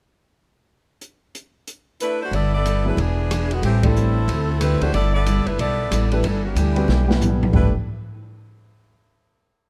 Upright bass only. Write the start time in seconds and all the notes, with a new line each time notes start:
2.31 G1
2.97 E1
3.62 A1
4.28 D2
4.81 D2
4.93 G1
5.46 F#1
5.59 B1
5.91 A1
6.23 G1
6.55 D2
6.88 B1
7.53 G1